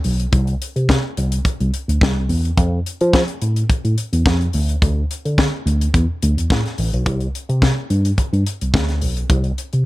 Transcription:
0.04 tine electric piano B1, open hi-hat
0.20 closed hi-hat
0.33 tine electric piano C2, kick, closed hi-hat
0.47 closed hi-hat
0.62 closed hi-hat
0.76 tine electric piano C3, closed hi-hat
0.89 kick, snare
1.17 tine electric piano C2, closed hi-hat
1.32 closed hi-hat
1.45 kick, closed hi-hat
1.60 tine electric piano C2, closed hi-hat
1.74 closed hi-hat
1.88 tine electric piano D2, closed hi-hat
2.01 tine electric piano C2, kick, snare
2.29 tine electric piano E2, open hi-hat
2.45 closed hi-hat
2.58 tine electric piano F2, kick, closed hi-hat
2.86 closed hi-hat
3.01 tine electric piano F3, closed hi-hat
3.13 kick, snare
3.28 closed hi-hat
3.42 tine electric piano A2, closed hi-hat
3.56 closed hi-hat
3.70 kick, closed hi-hat
3.85 tine electric piano A2, closed hi-hat
3.98 closed hi-hat
4.13 tine electric piano E2, closed hi-hat
4.26 tine electric piano F2, kick, snare
4.41 closed hi-hat
4.53 tine electric piano D2, open hi-hat
4.69 closed hi-hat
4.82 tine electric piano D2, kick, closed hi-hat
5.11 closed hi-hat
5.25 tine electric piano D3, closed hi-hat
5.38 kick, snare
5.66 tine electric piano D2, closed hi-hat
5.81 closed hi-hat
5.94 tine electric piano E2, kick, closed hi-hat
6.22 tine electric piano D2, closed hi-hat
6.38 tine electric piano E2, closed hi-hat
6.50 tine electric piano A2, kick, snare
6.66 snare, closed hi-hat
6.78 tine electric piano A1, open hi-hat
6.93 tine electric piano B1, closed hi-hat
7.06 tine electric piano C2, kick, closed hi-hat
7.20 closed hi-hat
7.35 closed hi-hat
7.49 tine electric piano C3, closed hi-hat
7.62 kick, snare
7.90 tine electric piano G2, closed hi-hat
8.05 closed hi-hat
8.18 kick, closed hi-hat
8.33 tine electric piano G2, closed hi-hat
8.47 closed hi-hat
8.61 tine electric piano C2, closed hi-hat
8.74 tine electric piano D2, kick, snare
8.89 snare, closed hi-hat
9.01 tine electric piano B1, open hi-hat
9.17 closed hi-hat
9.30 tine electric piano C2, kick, closed hi-hat
9.44 closed hi-hat
9.58 closed hi-hat
9.73 tine electric piano C3, closed hi-hat

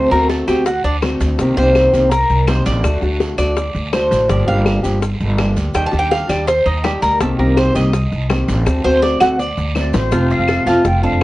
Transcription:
Already playing: upright bass D2, steel-string acoustic guitar D3 A3 C4 F#4, cuban tres C5
0.11 upright bass D2, steel-string acoustic guitar A3 C4 F#4, cuban tres A#4, high bongo, maracas
0.30 cuban tres A4, high bongo, short guiro, maracas
0.48 upright bass D2, steel-string acoustic guitar A3 C4 F#4, cuban tres G4, high bongo, short guiro, claves, maracas
0.66 cuban tres F#4, muted steel-string acoustic guitar stroke, high bongo, long guiro, maracas
0.84 upright bass D2, cuban tres D4, maracas
1.02 steel-string acoustic guitar D3 A3 C4 F#4, high bongo, low bongo, short guiro, claves, maracas
1.21 upright bass D2, high bongo, short guiro, maracas
1.38 upright bass C2, steel-string acoustic guitar C3 D#3 A#3 C4 G4, high bongo, long guiro, maracas
1.57 upright bass C2, steel-string acoustic guitar D#3 A#3 C4 G4, cuban tres C5, maracas
1.75 high bongo, short guiro, claves, maracas
1.93 upright bass C2, steel-string acoustic guitar D#3 A#3 C4 G4, short guiro, maracas
2.11 cuban tres A#4, muted steel-string acoustic guitar stroke, high bongo, long guiro, maracas
2.30 upright bass C2, maracas
2.47 steel-string acoustic guitar D#3 A#3 C4 G4, cuban tres C5, high bongo, low bongo, short guiro, claves, maracas
2.66 upright bass A1, cuban tres D5, short guiro, maracas
2.83 upright bass D2, steel-string acoustic guitar D3 A3 D4 F#4, high bongo, long guiro, claves, maracas
3.02 upright bass D2, steel-string acoustic guitar A3 D4 F#4, high bongo, maracas
3.20 high bongo, short guiro, maracas
3.38 upright bass D2, steel-string acoustic guitar A3 D4 F#4, cuban tres D5, high bongo, short guiro, claves, maracas
3.57 muted steel-string acoustic guitar stroke, high bongo, long guiro, maracas
3.75 upright bass D2, maracas
3.93 steel-string acoustic guitar D3 A3 D4 F#4, cuban tres C5, high bongo, low bongo, short guiro, claves, maracas
4.11 upright bass A1, high bongo, short guiro, maracas
4.29 upright bass G1, steel-string acoustic guitar D3 F3 A#3 D4 G4, cuban tres D5, high bongo, long guiro, maracas
4.47 upright bass G1, steel-string acoustic guitar F3 A#3 D4 G4, cuban tres F5, maracas
4.66 high bongo, short guiro, claves, maracas
4.83 upright bass G1, steel-string acoustic guitar F3 A#3 D4 G4, short guiro, maracas
5.01 muted steel-string acoustic guitar stroke, high bongo, long guiro, maracas
5.20 upright bass G1, maracas
5.38 steel-string acoustic guitar F3 A#3 D4 G4, high bongo, low bongo, short guiro, claves, maracas
5.56 upright bass D2, short guiro, maracas
5.74 upright bass D#2, steel-string acoustic guitar D#3 G3 D4 G4, cuban tres G5, high bongo, long guiro, claves, maracas
5.86 cuban tres A5
5.92 upright bass D#2, steel-string acoustic guitar G3 D4 G4, high bongo, maracas
5.99 cuban tres G5
6.11 cuban tres F5, high bongo, short guiro, maracas
6.29 upright bass D#2, steel-string acoustic guitar G3 D4 G4, cuban tres D5, high bongo, short guiro, claves, maracas
6.47 cuban tres C5, muted steel-string acoustic guitar stroke, high bongo, long guiro, maracas
6.66 upright bass D#2, cuban tres D#4, maracas
6.83 steel-string acoustic guitar D#3 G3 D4 G4, cuban tres G4, high bongo, low bongo, short guiro, claves, maracas
7.02 upright bass D2, cuban tres A#4, high bongo, short guiro, maracas
7.20 upright bass C2, steel-string acoustic guitar C3 D#3 A#3 C4 G4, cuban tres A4, high bongo, long guiro, maracas
7.38 upright bass C2, steel-string acoustic guitar D#3 A#3 C4 G4, cuban tres A#4, maracas
7.57 cuban tres C5, high bongo, short guiro, claves, maracas
7.74 upright bass C2, steel-string acoustic guitar D#3 A#3 C4 G4, cuban tres D#5, short guiro, maracas
7.93 muted steel-string acoustic guitar stroke, high bongo, long guiro, maracas
8.12 upright bass C2, maracas
8.29 steel-string acoustic guitar D#3 A#3 C4 G4, high bongo, low bongo, short guiro, claves, maracas
8.48 upright bass A1, short guiro, maracas
8.64 upright bass D2, steel-string acoustic guitar D3 A3 C4 F#4, high bongo, long guiro, claves, maracas
8.84 upright bass D2, steel-string acoustic guitar A3 C4 F#4, cuban tres C5, high bongo, maracas
9.02 cuban tres D5, high bongo, short guiro, maracas
9.20 upright bass D2, steel-string acoustic guitar A3 C4 F#4, cuban tres F#5, high bongo, short guiro, claves, maracas
9.39 cuban tres D5, muted steel-string acoustic guitar stroke, long guiro, maracas
9.58 upright bass D2, maracas
9.75 steel-string acoustic guitar D3 A3 C4 F#4, nylon-string guitar A3, flute D5, low bongo, short guiro, claves, maracas
9.94 upright bass A1, nylon-string guitar A3, flute C5, low bongo, short guiro, maracas
10.11 upright bass F1, steel-string acoustic guitar C3 F3 A3 C4 F4, cuban tres F4, high bongo, long guiro, maracas
10.30 nylon-string guitar C4, flute F5, maracas
10.39 upright bass F1
10.48 cuban tres A4, high bongo, short guiro, claves, maracas
10.66 upright bass F1, steel-string acoustic guitar F3 A3 C4 F4, cuban tres F4, nylon-string guitar F4, flute A5, short guiro, maracas
10.84 upright bass F1, nylon-string guitar C4, flute G5, muted steel-string acoustic guitar stroke, high bongo, long guiro, maracas
11.02 steel-string acoustic guitar A3 C4 F4, nylon-string guitar D4, cuban tres A4, flute F5, maracas
11.12 upright bass F1

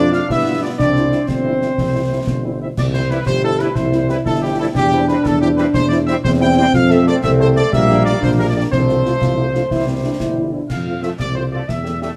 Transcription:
Already playing: tuba F2, euphonium D4, trombone section D4, trumpet section D5
0.12 french horn section A3 C4 F4, euphonium F4, trumpet section F5, snare
0.28 tuba G2, trombone section B3, euphonium E4, trumpet section E5, concert bass drum, snare
0.45 french horn section G3 B3 F4
0.61 french horn section G3 B3 F4, euphonium D4, trumpet section D5
0.78 tuba C2, trombone section C4, euphonium D4, trumpet section D5, concert bass drum, snare, crash
0.96 french horn section G3 C4 E4, snare
1.12 french horn section G3 C4 E4, snare
1.27 tuba G1, euphonium C4, trumpet section C5, concert bass drum, snare
1.44 french horn section G3 C4 E4
1.61 french horn section G3 C4 E4, snare
1.78 tuba C2, concert bass drum, snare
1.94 french horn section G3 C4 E4
2.12 french horn section G3 C4 E4
2.27 tuba G1, concert bass drum, snare
2.44 french horn section G3 C4 E4
2.60 french horn section G3 C4 E4, trumpet section E5
2.77 tuba C2, trumpet section D5, concert bass drum, snare, crash
2.94 french horn section G3 C4 E4, trumpet section C5, snare
3.10 trombone section G3 E4, french horn section G3 C4 E4, trumpet section B4, snare
3.26 tuba G1, euphonium G4, trumpet section C5, concert bass drum, snare
3.43 french horn section G3 C4 E4, trumpet section A4
3.59 french horn section G3 C4 E4, trombone section G3 E4, trumpet section B4, snare
3.75 tuba C2, euphonium E4, trumpet section C5, concert bass drum, snare
3.92 french horn section G3 C4 E4, snare
4.09 french horn section G3 C4 E4, trombone section G3 E4, trumpet section B4, snare
4.25 tuba G1, euphonium E4, trumpet section A4, concert bass drum, snare
4.42 french horn section G3 C4 E4, trumpet section G4
4.58 trombone section G3 E4, french horn section G3 C4 E4, trumpet section A4
4.74 tuba E2, euphonium D4, trumpet section G4, concert bass drum, snare, crash
4.92 french horn section G3 C4 E4, snare
5.08 trombone section G3 C4, french horn section G3 C4 E4, trumpet section B4, snare
5.24 tuba E2, trumpet section A4, concert bass drum, snare
5.40 french horn section G3 C4 E4, trumpet section G4
5.57 trombone section G3 C4, french horn section G3 C4 E4, trumpet section B4, snare
5.74 tuba E2, trumpet section C5, concert bass drum, snare
5.89 french horn section G3 C4 E4, trumpet section D5, snare
6.06 trombone section G3 C4, french horn section G3 C4 E4, trumpet section E5, snare
6.23 tuba E2, euphonium C4, trumpet section C5, concert bass drum, snare
6.40 french horn section G3 C4 E4, trumpet section G5
6.57 french horn section G3 C4 E4, trombone section G3 C4, trumpet section G5
6.74 tuba F2, trombone section A3 C4, trumpet section F5, concert bass drum, snare, crash
6.90 french horn section A3 C4 A4, trumpet section E5, snare
7.07 french horn section A3 C4 A4, trumpet section D5, snare
7.22 tuba C2, euphonium A3, trumpet section E5, concert bass drum, snare
7.40 french horn section A3 C4 A4, trumpet section C5
7.56 french horn section A3 C4 A4, trumpet section D5, snare
7.72 tuba A#1, euphonium G3, trombone section G3 A#3, trumpet section E5, concert bass drum, snare
7.90 french horn section A#3 D4 G4, snare
8.05 french horn section A#3 D4 G4, trumpet section D5, snare
8.21 tuba A#1, euphonium D4, trumpet section C5, concert bass drum, snare
8.39 french horn section A#3 D4 G4, trumpet section A#4
8.48 trumpet section D5
8.54 french horn section A#3 D4 G4, trumpet section D5
8.71 tuba C2, trombone section F3 A3, euphonium C4, trumpet section C5, concert bass drum, snare, crash
8.89 french horn section A3 C4 F4, snare
9.05 french horn section A3 C4 F4, snare
9.19 tuba C2, euphonium F4, concert bass drum, snare
9.37 french horn section A3 C4 F4, euphonium E4
9.54 french horn section A3 C4 F4, euphonium D4, snare
9.71 tuba C2, trombone section E3 G3, euphonium E4, concert bass drum, snare
9.87 french horn section G3 C4 E4, euphonium C4
10.03 french horn section G3 C4 E4, euphonium D4
10.20 tuba G1, euphonium E4, concert bass drum, snare
10.36 french horn section G3 C4 E4
10.53 french horn section G3 C4 E4, euphonium D4
10.69 tuba F2, trumpet section F5, concert bass drum, snare, crash
10.86 french horn section A3 C4 F4
11.02 trombone section F3 A3, french horn section A3 C4 F4, trumpet section E5, snare
11.19 tuba C2, trumpet section D5, concert bass drum, snare
11.35 french horn section A3 C4 F4, trumpet section C5
11.51 trombone section F3 A3, french horn section A3 C4 F4, trumpet section D5
11.68 tuba E2, trumpet section E5, concert bass drum, snare
11.83 french horn section A3 C#4 G4, snare
12.00 trombone section G3 A3, french horn section A3 C#4 G4, trumpet section E5, snare

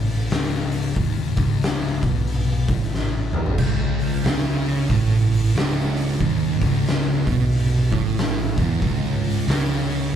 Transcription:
Already playing: picked electric bass A1, distorted electric guitar A2
0.07 open hi-hat
0.29 picked electric bass C#1, distorted electric guitar C#2, snare, open hi-hat
0.72 open hi-hat
0.96 picked electric bass D#1, distorted electric guitar D#2, kick, open hi-hat
1.36 picked electric bass C#1, distorted electric guitar C#2, kick, open hi-hat
1.62 snare, open hi-hat
2.03 picked electric bass B1, distorted electric guitar B2, kick, open hi-hat
2.27 open hi-hat
2.68 picked electric bass A1, distorted electric guitar A2, kick, open hi-hat
2.82 snare
2.95 snare
3.33 picked electric bass E1, distorted electric guitar E2, mid tom
3.46 floor tom
3.58 picked electric bass C#1, distorted electric guitar C#2, kick, crash
3.99 open hi-hat
4.23 picked electric bass C#2, distorted electric guitar C#3, snare, open hi-hat
4.66 open hi-hat
4.89 picked electric bass A1, distorted electric guitar A2, kick, open hi-hat
5.31 open hi-hat
5.55 picked electric bass C#1, distorted electric guitar C#2, snare, open hi-hat
5.97 open hi-hat
6.20 picked electric bass D#1, distorted electric guitar D#2, kick, open hi-hat
6.60 picked electric bass C#1, distorted electric guitar C#2, kick, open hi-hat
6.87 snare, open hi-hat
7.25 picked electric bass B1, distorted electric guitar B2, kick, open hi-hat
7.52 open hi-hat
7.91 picked electric bass A1, distorted electric guitar A2, kick, open hi-hat
8.17 snare, open hi-hat
8.57 picked electric bass E1, distorted electric guitar E2, kick, open hi-hat
8.82 picked electric bass C#1, distorted electric guitar C#2, kick, open hi-hat
9.24 open hi-hat
9.47 picked electric bass C#2, distorted electric guitar C#3, snare, open hi-hat
9.90 open hi-hat

